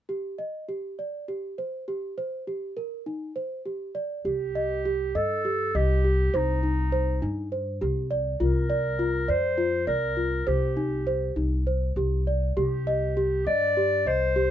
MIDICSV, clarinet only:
0, 0, Header, 1, 2, 480
1, 0, Start_track
1, 0, Tempo, 592885
1, 78, Time_signature, 7, 3, 24, 8
1, 8237, Tempo, 598205
1, 11714, End_track
2, 0, Start_track
2, 0, Title_t, "Clarinet"
2, 0, Program_c, 0, 71
2, 3445, Note_on_c, 0, 67, 61
2, 4172, Note_on_c, 0, 69, 71
2, 4184, Note_off_c, 0, 67, 0
2, 4657, Note_on_c, 0, 67, 78
2, 4669, Note_off_c, 0, 69, 0
2, 5143, Note_on_c, 0, 63, 66
2, 5155, Note_off_c, 0, 67, 0
2, 6092, Note_off_c, 0, 63, 0
2, 6815, Note_on_c, 0, 70, 69
2, 7527, Note_on_c, 0, 72, 85
2, 7539, Note_off_c, 0, 70, 0
2, 7988, Note_off_c, 0, 72, 0
2, 7992, Note_on_c, 0, 70, 74
2, 8478, Note_on_c, 0, 67, 57
2, 8490, Note_off_c, 0, 70, 0
2, 9437, Note_off_c, 0, 67, 0
2, 10157, Note_on_c, 0, 67, 56
2, 10846, Note_off_c, 0, 67, 0
2, 10878, Note_on_c, 0, 74, 83
2, 11365, Note_on_c, 0, 72, 82
2, 11377, Note_off_c, 0, 74, 0
2, 11714, Note_off_c, 0, 72, 0
2, 11714, End_track
0, 0, End_of_file